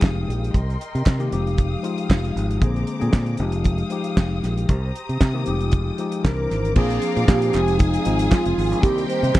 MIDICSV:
0, 0, Header, 1, 7, 480
1, 0, Start_track
1, 0, Tempo, 518135
1, 503, Time_signature, 4, 2, 24, 8
1, 8707, End_track
2, 0, Start_track
2, 0, Title_t, "String section"
2, 0, Program_c, 0, 48
2, 0, Note_on_c, 0, 56, 67
2, 0, Note_on_c, 0, 77, 56
2, 0, Note_on_c, 0, 79, 58
2, 0, Note_on_c, 0, 87, 73
2, 467, Note_off_c, 0, 56, 0
2, 485, Note_off_c, 0, 77, 0
2, 486, Note_off_c, 0, 87, 0
2, 496, Note_on_c, 0, 75, 59
2, 498, Note_on_c, 0, 70, 60
2, 498, Note_on_c, 0, 84, 69
2, 1210, Note_on_c, 0, 87, 74
2, 1214, Note_on_c, 0, 77, 69
2, 1215, Note_off_c, 0, 75, 0
2, 1216, Note_off_c, 0, 70, 0
2, 1216, Note_off_c, 0, 84, 0
2, 1218, Note_on_c, 0, 56, 70
2, 2394, Note_off_c, 0, 79, 0
2, 2409, Note_off_c, 0, 87, 0
2, 2411, Note_off_c, 0, 77, 0
2, 2425, Note_on_c, 0, 72, 66
2, 2428, Note_on_c, 0, 82, 53
2, 2428, Note_on_c, 0, 86, 77
2, 3142, Note_off_c, 0, 72, 0
2, 3143, Note_off_c, 0, 82, 0
2, 3143, Note_off_c, 0, 86, 0
2, 3154, Note_on_c, 0, 87, 80
2, 3158, Note_on_c, 0, 77, 68
2, 3163, Note_on_c, 0, 79, 64
2, 4318, Note_off_c, 0, 56, 0
2, 4342, Note_off_c, 0, 87, 0
2, 4344, Note_off_c, 0, 77, 0
2, 4347, Note_off_c, 0, 79, 0
2, 4352, Note_on_c, 0, 82, 61
2, 4354, Note_on_c, 0, 87, 82
2, 4357, Note_on_c, 0, 72, 57
2, 4360, Note_on_c, 0, 67, 68
2, 5065, Note_off_c, 0, 82, 0
2, 5068, Note_off_c, 0, 72, 0
2, 5070, Note_off_c, 0, 67, 0
2, 5074, Note_on_c, 0, 79, 62
2, 5077, Note_on_c, 0, 65, 67
2, 5078, Note_on_c, 0, 56, 60
2, 5779, Note_off_c, 0, 87, 0
2, 5780, Note_on_c, 0, 82, 62
2, 5782, Note_on_c, 0, 72, 63
2, 5783, Note_on_c, 0, 86, 76
2, 5786, Note_off_c, 0, 79, 0
2, 5787, Note_off_c, 0, 65, 0
2, 5787, Note_on_c, 0, 64, 68
2, 5788, Note_off_c, 0, 56, 0
2, 6257, Note_off_c, 0, 82, 0
2, 6257, Note_off_c, 0, 86, 0
2, 6261, Note_off_c, 0, 72, 0
2, 6264, Note_off_c, 0, 64, 0
2, 6268, Note_on_c, 0, 82, 72
2, 6268, Note_on_c, 0, 86, 88
2, 6271, Note_on_c, 0, 68, 72
2, 6271, Note_on_c, 0, 72, 66
2, 6966, Note_off_c, 0, 68, 0
2, 6971, Note_on_c, 0, 77, 73
2, 6972, Note_on_c, 0, 87, 84
2, 6977, Note_on_c, 0, 68, 77
2, 6981, Note_off_c, 0, 82, 0
2, 6981, Note_off_c, 0, 86, 0
2, 6982, Note_off_c, 0, 72, 0
2, 8164, Note_off_c, 0, 77, 0
2, 8165, Note_off_c, 0, 87, 0
2, 8167, Note_off_c, 0, 68, 0
2, 8180, Note_on_c, 0, 75, 66
2, 8182, Note_on_c, 0, 70, 76
2, 8184, Note_on_c, 0, 84, 86
2, 8707, Note_off_c, 0, 70, 0
2, 8707, Note_off_c, 0, 75, 0
2, 8707, Note_off_c, 0, 84, 0
2, 8707, End_track
3, 0, Start_track
3, 0, Title_t, "String section"
3, 0, Program_c, 1, 48
3, 6271, Note_on_c, 1, 65, 79
3, 6272, Note_on_c, 1, 77, 93
3, 6975, Note_off_c, 1, 65, 0
3, 6976, Note_off_c, 1, 77, 0
3, 6986, Note_on_c, 1, 80, 90
3, 6991, Note_on_c, 1, 68, 80
3, 8160, Note_off_c, 1, 80, 0
3, 8163, Note_off_c, 1, 68, 0
3, 8176, Note_on_c, 1, 79, 93
3, 8179, Note_on_c, 1, 67, 91
3, 8707, Note_off_c, 1, 67, 0
3, 8707, Note_off_c, 1, 79, 0
3, 8707, End_track
4, 0, Start_track
4, 0, Title_t, "Alto flute"
4, 0, Program_c, 2, 73
4, 5794, Note_on_c, 2, 70, 85
4, 6239, Note_off_c, 2, 70, 0
4, 6259, Note_on_c, 2, 68, 116
4, 6745, Note_on_c, 2, 67, 97
4, 6759, Note_off_c, 2, 68, 0
4, 7208, Note_on_c, 2, 63, 108
4, 7222, Note_off_c, 2, 67, 0
4, 7687, Note_on_c, 2, 65, 102
4, 7701, Note_off_c, 2, 63, 0
4, 8161, Note_off_c, 2, 65, 0
4, 8167, Note_on_c, 2, 67, 120
4, 8398, Note_off_c, 2, 67, 0
4, 8413, Note_on_c, 2, 72, 107
4, 8707, Note_off_c, 2, 72, 0
4, 8707, End_track
5, 0, Start_track
5, 0, Title_t, "Tine electric piano"
5, 0, Program_c, 3, 4
5, 0, Control_c, 3, 64, 127
5, 0, Note_on_c, 3, 53, 73
5, 0, Note_on_c, 3, 56, 66
5, 0, Note_on_c, 3, 63, 66
5, 0, Note_on_c, 3, 67, 69
5, 0, Note_on_c, 3, 68, 81
5, 496, Note_off_c, 3, 53, 0
5, 499, Note_off_c, 3, 56, 0
5, 502, Note_off_c, 3, 63, 0
5, 516, Control_c, 3, 64, 0
5, 517, Note_off_c, 3, 67, 0
5, 534, Note_off_c, 3, 68, 0
5, 676, Control_c, 3, 64, 127
5, 1098, Note_on_c, 3, 51, 86
5, 1106, Note_on_c, 3, 58, 74
5, 1109, Note_on_c, 3, 60, 73
5, 1114, Note_on_c, 3, 67, 90
5, 1218, Note_off_c, 3, 51, 0
5, 1220, Note_on_c, 3, 53, 81
5, 1222, Note_off_c, 3, 58, 0
5, 1223, Note_off_c, 3, 60, 0
5, 1224, Note_off_c, 3, 67, 0
5, 1226, Note_on_c, 3, 56, 69
5, 1230, Note_on_c, 3, 63, 67
5, 1235, Note_on_c, 3, 67, 88
5, 1237, Control_c, 3, 64, 0
5, 1425, Control_c, 3, 64, 127
5, 1614, Note_off_c, 3, 53, 0
5, 1617, Note_off_c, 3, 56, 0
5, 1619, Note_off_c, 3, 63, 0
5, 1621, Note_off_c, 3, 67, 0
5, 1694, Note_on_c, 3, 53, 76
5, 1697, Note_on_c, 3, 56, 67
5, 1702, Note_on_c, 3, 63, 60
5, 1707, Note_on_c, 3, 65, 80
5, 2264, Note_off_c, 3, 53, 0
5, 2265, Note_off_c, 3, 56, 0
5, 2268, Note_off_c, 3, 63, 0
5, 2271, Note_off_c, 3, 65, 0
5, 2414, Note_on_c, 3, 50, 74
5, 2418, Note_on_c, 3, 58, 80
5, 2418, Note_on_c, 3, 60, 74
5, 2425, Note_on_c, 3, 68, 85
5, 2443, Control_c, 3, 64, 0
5, 2580, Control_c, 3, 64, 127
5, 2703, Note_off_c, 3, 50, 0
5, 2705, Note_off_c, 3, 58, 0
5, 2705, Note_off_c, 3, 60, 0
5, 2709, Note_off_c, 3, 68, 0
5, 2776, Note_on_c, 3, 50, 74
5, 2782, Note_on_c, 3, 58, 60
5, 2788, Note_on_c, 3, 60, 64
5, 2792, Note_on_c, 3, 68, 78
5, 3139, Note_on_c, 3, 53, 76
5, 3140, Note_off_c, 3, 50, 0
5, 3143, Note_off_c, 3, 58, 0
5, 3146, Note_off_c, 3, 60, 0
5, 3147, Note_on_c, 3, 56, 73
5, 3148, Note_off_c, 3, 68, 0
5, 3150, Note_on_c, 3, 63, 68
5, 3153, Note_on_c, 3, 67, 81
5, 3164, Control_c, 3, 64, 0
5, 3298, Control_c, 3, 64, 127
5, 3535, Note_off_c, 3, 53, 0
5, 3539, Note_off_c, 3, 56, 0
5, 3541, Note_off_c, 3, 63, 0
5, 3542, Note_off_c, 3, 67, 0
5, 3617, Note_on_c, 3, 53, 75
5, 3623, Note_on_c, 3, 56, 71
5, 3627, Note_on_c, 3, 63, 70
5, 3632, Note_on_c, 3, 67, 85
5, 4345, Note_off_c, 3, 53, 0
5, 4348, Note_off_c, 3, 56, 0
5, 4350, Note_off_c, 3, 63, 0
5, 4353, Note_off_c, 3, 67, 0
5, 4364, Control_c, 3, 64, 0
5, 4500, Control_c, 3, 64, 127
5, 4942, Note_on_c, 3, 51, 93
5, 4951, Note_on_c, 3, 58, 71
5, 4952, Note_on_c, 3, 60, 82
5, 4957, Note_on_c, 3, 67, 94
5, 5061, Note_off_c, 3, 67, 0
5, 5062, Note_on_c, 3, 53, 76
5, 5064, Note_off_c, 3, 51, 0
5, 5064, Note_on_c, 3, 56, 68
5, 5068, Note_off_c, 3, 58, 0
5, 5069, Note_off_c, 3, 60, 0
5, 5073, Note_on_c, 3, 67, 87
5, 5074, Note_on_c, 3, 63, 73
5, 5087, Control_c, 3, 64, 0
5, 5268, Control_c, 3, 64, 127
5, 5457, Note_off_c, 3, 53, 0
5, 5458, Note_off_c, 3, 56, 0
5, 5462, Note_off_c, 3, 67, 0
5, 5463, Note_off_c, 3, 63, 0
5, 5547, Note_on_c, 3, 53, 78
5, 5551, Note_on_c, 3, 56, 69
5, 5557, Note_on_c, 3, 63, 69
5, 5562, Note_on_c, 3, 67, 83
5, 5781, Note_on_c, 3, 52, 76
5, 5784, Note_on_c, 3, 60, 67
5, 5789, Note_off_c, 3, 53, 0
5, 5789, Note_on_c, 3, 62, 72
5, 5791, Note_off_c, 3, 56, 0
5, 5793, Note_on_c, 3, 70, 78
5, 5795, Note_off_c, 3, 63, 0
5, 5797, Note_off_c, 3, 67, 0
5, 5804, Control_c, 3, 64, 0
5, 5973, Control_c, 3, 64, 127
5, 6176, Note_off_c, 3, 52, 0
5, 6178, Note_off_c, 3, 60, 0
5, 6180, Note_off_c, 3, 62, 0
5, 6182, Note_off_c, 3, 70, 0
5, 6262, Note_on_c, 3, 53, 81
5, 6267, Note_on_c, 3, 58, 78
5, 6269, Note_on_c, 3, 60, 72
5, 6274, Note_on_c, 3, 62, 81
5, 6276, Note_on_c, 3, 68, 101
5, 6283, Control_c, 3, 64, 0
5, 6446, Control_c, 3, 64, 127
5, 6644, Note_off_c, 3, 53, 0
5, 6646, Note_off_c, 3, 58, 0
5, 6647, Note_off_c, 3, 60, 0
5, 6650, Note_off_c, 3, 62, 0
5, 6651, Note_off_c, 3, 68, 0
5, 6741, Note_on_c, 3, 53, 74
5, 6744, Note_on_c, 3, 58, 66
5, 6751, Note_on_c, 3, 60, 69
5, 6752, Note_on_c, 3, 62, 70
5, 6754, Note_on_c, 3, 68, 89
5, 6974, Note_off_c, 3, 53, 0
5, 6981, Note_off_c, 3, 60, 0
5, 6985, Note_on_c, 3, 53, 78
5, 6986, Note_off_c, 3, 58, 0
5, 6989, Note_off_c, 3, 68, 0
5, 6990, Note_off_c, 3, 62, 0
5, 6990, Note_on_c, 3, 56, 70
5, 6992, Note_on_c, 3, 60, 74
5, 6994, Note_on_c, 3, 63, 74
5, 7000, Note_on_c, 3, 68, 89
5, 7003, Control_c, 3, 64, 0
5, 7151, Control_c, 3, 64, 127
5, 7376, Note_off_c, 3, 53, 0
5, 7379, Note_off_c, 3, 56, 0
5, 7380, Note_off_c, 3, 60, 0
5, 7381, Note_off_c, 3, 63, 0
5, 7383, Note_off_c, 3, 68, 0
5, 7462, Note_on_c, 3, 53, 76
5, 7468, Note_on_c, 3, 56, 72
5, 7468, Note_on_c, 3, 60, 68
5, 7472, Note_on_c, 3, 63, 72
5, 7474, Note_on_c, 3, 65, 80
5, 8025, Note_off_c, 3, 53, 0
5, 8028, Note_off_c, 3, 56, 0
5, 8028, Note_off_c, 3, 60, 0
5, 8030, Note_off_c, 3, 63, 0
5, 8031, Note_off_c, 3, 65, 0
5, 8170, Note_on_c, 3, 51, 81
5, 8176, Note_on_c, 3, 55, 82
5, 8176, Note_on_c, 3, 58, 76
5, 8181, Note_on_c, 3, 60, 77
5, 8187, Note_on_c, 3, 67, 88
5, 8196, Control_c, 3, 64, 0
5, 8343, Control_c, 3, 64, 127
5, 8555, Note_off_c, 3, 51, 0
5, 8558, Note_off_c, 3, 55, 0
5, 8558, Note_off_c, 3, 58, 0
5, 8560, Note_off_c, 3, 60, 0
5, 8563, Note_off_c, 3, 67, 0
5, 8651, Note_on_c, 3, 51, 75
5, 8656, Note_on_c, 3, 55, 68
5, 8659, Note_on_c, 3, 58, 72
5, 8664, Note_on_c, 3, 60, 77
5, 8668, Note_on_c, 3, 67, 80
5, 8707, Note_off_c, 3, 51, 0
5, 8707, Note_off_c, 3, 55, 0
5, 8707, Note_off_c, 3, 58, 0
5, 8707, Note_off_c, 3, 60, 0
5, 8707, Note_off_c, 3, 67, 0
5, 8707, End_track
6, 0, Start_track
6, 0, Title_t, "Fingered electric bass"
6, 0, Program_c, 4, 33
6, 23, Note_on_c, 4, 29, 82
6, 216, Note_off_c, 4, 29, 0
6, 262, Note_on_c, 4, 34, 85
6, 456, Note_off_c, 4, 34, 0
6, 506, Note_on_c, 4, 36, 95
6, 698, Note_off_c, 4, 36, 0
6, 878, Note_on_c, 4, 48, 86
6, 967, Note_off_c, 4, 48, 0
6, 985, Note_on_c, 4, 48, 79
6, 1178, Note_off_c, 4, 48, 0
6, 1228, Note_on_c, 4, 29, 91
6, 1614, Note_off_c, 4, 29, 0
6, 1948, Note_on_c, 4, 29, 89
6, 2142, Note_off_c, 4, 29, 0
6, 2186, Note_on_c, 4, 32, 82
6, 2381, Note_off_c, 4, 32, 0
6, 2425, Note_on_c, 4, 34, 98
6, 2620, Note_off_c, 4, 34, 0
6, 2798, Note_on_c, 4, 46, 81
6, 2889, Note_off_c, 4, 46, 0
6, 2901, Note_on_c, 4, 46, 83
6, 3098, Note_off_c, 4, 46, 0
6, 3146, Note_on_c, 4, 29, 98
6, 3535, Note_off_c, 4, 29, 0
6, 3866, Note_on_c, 4, 29, 91
6, 4062, Note_off_c, 4, 29, 0
6, 4109, Note_on_c, 4, 34, 80
6, 4303, Note_off_c, 4, 34, 0
6, 4349, Note_on_c, 4, 36, 95
6, 4543, Note_off_c, 4, 36, 0
6, 4717, Note_on_c, 4, 48, 79
6, 4809, Note_off_c, 4, 48, 0
6, 4828, Note_on_c, 4, 48, 98
6, 5023, Note_off_c, 4, 48, 0
6, 5072, Note_on_c, 4, 29, 88
6, 5458, Note_off_c, 4, 29, 0
6, 5790, Note_on_c, 4, 36, 95
6, 5984, Note_off_c, 4, 36, 0
6, 6033, Note_on_c, 4, 32, 80
6, 6225, Note_off_c, 4, 32, 0
6, 6267, Note_on_c, 4, 34, 123
6, 6461, Note_off_c, 4, 34, 0
6, 6639, Note_on_c, 4, 46, 97
6, 6729, Note_off_c, 4, 46, 0
6, 6749, Note_on_c, 4, 46, 102
6, 6942, Note_off_c, 4, 46, 0
6, 6990, Note_on_c, 4, 29, 105
6, 7375, Note_off_c, 4, 29, 0
6, 7470, Note_on_c, 4, 32, 93
6, 7662, Note_off_c, 4, 32, 0
6, 7838, Note_on_c, 4, 29, 86
6, 7927, Note_off_c, 4, 29, 0
6, 7947, Note_on_c, 4, 32, 82
6, 8073, Note_on_c, 4, 34, 89
6, 8087, Note_off_c, 4, 32, 0
6, 8184, Note_off_c, 4, 34, 0
6, 8184, Note_on_c, 4, 36, 115
6, 8377, Note_off_c, 4, 36, 0
6, 8550, Note_on_c, 4, 48, 93
6, 8641, Note_off_c, 4, 48, 0
6, 8664, Note_on_c, 4, 48, 99
6, 8707, Note_off_c, 4, 48, 0
6, 8707, End_track
7, 0, Start_track
7, 0, Title_t, "Drums"
7, 15, Note_on_c, 9, 39, 83
7, 22, Note_on_c, 9, 36, 106
7, 34, Note_on_c, 9, 38, 100
7, 108, Note_off_c, 9, 39, 0
7, 114, Note_off_c, 9, 36, 0
7, 127, Note_off_c, 9, 38, 0
7, 280, Note_on_c, 9, 42, 53
7, 373, Note_off_c, 9, 42, 0
7, 410, Note_on_c, 9, 42, 38
7, 503, Note_off_c, 9, 42, 0
7, 504, Note_on_c, 9, 36, 86
7, 510, Note_on_c, 9, 42, 54
7, 597, Note_off_c, 9, 36, 0
7, 603, Note_off_c, 9, 42, 0
7, 648, Note_on_c, 9, 42, 31
7, 741, Note_off_c, 9, 42, 0
7, 751, Note_on_c, 9, 42, 55
7, 844, Note_off_c, 9, 42, 0
7, 882, Note_on_c, 9, 42, 40
7, 975, Note_off_c, 9, 42, 0
7, 982, Note_on_c, 9, 39, 90
7, 984, Note_on_c, 9, 36, 103
7, 991, Note_on_c, 9, 38, 95
7, 1075, Note_off_c, 9, 39, 0
7, 1076, Note_off_c, 9, 36, 0
7, 1084, Note_off_c, 9, 38, 0
7, 1111, Note_on_c, 9, 42, 31
7, 1203, Note_off_c, 9, 42, 0
7, 1226, Note_on_c, 9, 42, 54
7, 1318, Note_off_c, 9, 42, 0
7, 1362, Note_on_c, 9, 42, 38
7, 1455, Note_off_c, 9, 42, 0
7, 1463, Note_on_c, 9, 42, 67
7, 1468, Note_on_c, 9, 36, 92
7, 1556, Note_off_c, 9, 42, 0
7, 1560, Note_off_c, 9, 36, 0
7, 1704, Note_on_c, 9, 42, 54
7, 1797, Note_off_c, 9, 42, 0
7, 1833, Note_on_c, 9, 42, 48
7, 1925, Note_off_c, 9, 42, 0
7, 1944, Note_on_c, 9, 36, 97
7, 1949, Note_on_c, 9, 39, 91
7, 1954, Note_on_c, 9, 38, 104
7, 2037, Note_off_c, 9, 36, 0
7, 2042, Note_off_c, 9, 39, 0
7, 2047, Note_off_c, 9, 38, 0
7, 2079, Note_on_c, 9, 42, 31
7, 2171, Note_off_c, 9, 42, 0
7, 2196, Note_on_c, 9, 42, 52
7, 2289, Note_off_c, 9, 42, 0
7, 2322, Note_on_c, 9, 42, 42
7, 2414, Note_off_c, 9, 42, 0
7, 2424, Note_on_c, 9, 36, 97
7, 2424, Note_on_c, 9, 42, 59
7, 2516, Note_off_c, 9, 42, 0
7, 2517, Note_off_c, 9, 36, 0
7, 2559, Note_on_c, 9, 42, 28
7, 2652, Note_off_c, 9, 42, 0
7, 2659, Note_on_c, 9, 42, 55
7, 2751, Note_off_c, 9, 42, 0
7, 2791, Note_on_c, 9, 42, 37
7, 2884, Note_off_c, 9, 42, 0
7, 2897, Note_on_c, 9, 38, 94
7, 2902, Note_on_c, 9, 36, 102
7, 2908, Note_on_c, 9, 39, 98
7, 2989, Note_off_c, 9, 38, 0
7, 2994, Note_off_c, 9, 36, 0
7, 3000, Note_off_c, 9, 39, 0
7, 3021, Note_on_c, 9, 42, 34
7, 3114, Note_off_c, 9, 42, 0
7, 3125, Note_on_c, 9, 42, 56
7, 3218, Note_off_c, 9, 42, 0
7, 3261, Note_on_c, 9, 42, 45
7, 3354, Note_off_c, 9, 42, 0
7, 3375, Note_on_c, 9, 42, 73
7, 3385, Note_on_c, 9, 36, 94
7, 3467, Note_off_c, 9, 42, 0
7, 3478, Note_off_c, 9, 36, 0
7, 3502, Note_on_c, 9, 42, 34
7, 3594, Note_off_c, 9, 42, 0
7, 3614, Note_on_c, 9, 42, 58
7, 3706, Note_off_c, 9, 42, 0
7, 3743, Note_on_c, 9, 42, 52
7, 3835, Note_off_c, 9, 42, 0
7, 3863, Note_on_c, 9, 36, 105
7, 3863, Note_on_c, 9, 38, 106
7, 3870, Note_on_c, 9, 39, 82
7, 3955, Note_off_c, 9, 38, 0
7, 3956, Note_off_c, 9, 36, 0
7, 3963, Note_off_c, 9, 39, 0
7, 4107, Note_on_c, 9, 38, 35
7, 4111, Note_on_c, 9, 42, 51
7, 4200, Note_off_c, 9, 38, 0
7, 4203, Note_off_c, 9, 42, 0
7, 4238, Note_on_c, 9, 42, 40
7, 4331, Note_off_c, 9, 42, 0
7, 4342, Note_on_c, 9, 42, 64
7, 4345, Note_on_c, 9, 36, 100
7, 4435, Note_off_c, 9, 42, 0
7, 4438, Note_off_c, 9, 36, 0
7, 4591, Note_on_c, 9, 42, 58
7, 4683, Note_off_c, 9, 42, 0
7, 4719, Note_on_c, 9, 42, 38
7, 4812, Note_off_c, 9, 42, 0
7, 4823, Note_on_c, 9, 38, 100
7, 4825, Note_on_c, 9, 36, 108
7, 4835, Note_on_c, 9, 39, 95
7, 4915, Note_off_c, 9, 38, 0
7, 4918, Note_off_c, 9, 36, 0
7, 4928, Note_off_c, 9, 39, 0
7, 5056, Note_on_c, 9, 42, 58
7, 5149, Note_off_c, 9, 42, 0
7, 5192, Note_on_c, 9, 42, 39
7, 5285, Note_off_c, 9, 42, 0
7, 5295, Note_on_c, 9, 42, 68
7, 5307, Note_on_c, 9, 36, 96
7, 5387, Note_off_c, 9, 42, 0
7, 5400, Note_off_c, 9, 36, 0
7, 5541, Note_on_c, 9, 42, 58
7, 5634, Note_off_c, 9, 42, 0
7, 5668, Note_on_c, 9, 42, 51
7, 5760, Note_off_c, 9, 42, 0
7, 5786, Note_on_c, 9, 36, 102
7, 5787, Note_on_c, 9, 38, 93
7, 5792, Note_on_c, 9, 39, 89
7, 5879, Note_off_c, 9, 36, 0
7, 5880, Note_off_c, 9, 38, 0
7, 5885, Note_off_c, 9, 39, 0
7, 6030, Note_on_c, 9, 38, 35
7, 6033, Note_on_c, 9, 42, 54
7, 6123, Note_off_c, 9, 38, 0
7, 6126, Note_off_c, 9, 42, 0
7, 6161, Note_on_c, 9, 42, 39
7, 6253, Note_off_c, 9, 42, 0
7, 6258, Note_on_c, 9, 49, 86
7, 6264, Note_on_c, 9, 36, 102
7, 6351, Note_off_c, 9, 49, 0
7, 6357, Note_off_c, 9, 36, 0
7, 6396, Note_on_c, 9, 42, 40
7, 6489, Note_off_c, 9, 42, 0
7, 6501, Note_on_c, 9, 42, 69
7, 6593, Note_off_c, 9, 42, 0
7, 6637, Note_on_c, 9, 42, 48
7, 6730, Note_off_c, 9, 42, 0
7, 6746, Note_on_c, 9, 36, 113
7, 6749, Note_on_c, 9, 38, 106
7, 6754, Note_on_c, 9, 39, 108
7, 6838, Note_off_c, 9, 36, 0
7, 6841, Note_off_c, 9, 38, 0
7, 6846, Note_off_c, 9, 39, 0
7, 6873, Note_on_c, 9, 42, 52
7, 6966, Note_off_c, 9, 42, 0
7, 6978, Note_on_c, 9, 42, 64
7, 6991, Note_on_c, 9, 39, 84
7, 7071, Note_off_c, 9, 42, 0
7, 7084, Note_off_c, 9, 39, 0
7, 7113, Note_on_c, 9, 42, 52
7, 7206, Note_off_c, 9, 42, 0
7, 7218, Note_on_c, 9, 42, 77
7, 7228, Note_on_c, 9, 36, 116
7, 7311, Note_off_c, 9, 42, 0
7, 7320, Note_off_c, 9, 36, 0
7, 7352, Note_on_c, 9, 42, 55
7, 7444, Note_off_c, 9, 42, 0
7, 7458, Note_on_c, 9, 42, 64
7, 7551, Note_off_c, 9, 42, 0
7, 7589, Note_on_c, 9, 42, 62
7, 7681, Note_off_c, 9, 42, 0
7, 7704, Note_on_c, 9, 36, 114
7, 7705, Note_on_c, 9, 39, 89
7, 7709, Note_on_c, 9, 38, 118
7, 7797, Note_off_c, 9, 36, 0
7, 7798, Note_off_c, 9, 39, 0
7, 7802, Note_off_c, 9, 38, 0
7, 7833, Note_on_c, 9, 42, 50
7, 7925, Note_off_c, 9, 42, 0
7, 7953, Note_on_c, 9, 46, 61
7, 8046, Note_off_c, 9, 46, 0
7, 8083, Note_on_c, 9, 42, 49
7, 8176, Note_off_c, 9, 42, 0
7, 8183, Note_on_c, 9, 36, 114
7, 8185, Note_on_c, 9, 42, 74
7, 8275, Note_off_c, 9, 36, 0
7, 8278, Note_off_c, 9, 42, 0
7, 8320, Note_on_c, 9, 42, 44
7, 8412, Note_off_c, 9, 42, 0
7, 8427, Note_on_c, 9, 42, 58
7, 8520, Note_off_c, 9, 42, 0
7, 8558, Note_on_c, 9, 42, 46
7, 8651, Note_off_c, 9, 42, 0
7, 8661, Note_on_c, 9, 36, 127
7, 8662, Note_on_c, 9, 38, 114
7, 8664, Note_on_c, 9, 39, 115
7, 8707, Note_off_c, 9, 36, 0
7, 8707, Note_off_c, 9, 38, 0
7, 8707, Note_off_c, 9, 39, 0
7, 8707, End_track
0, 0, End_of_file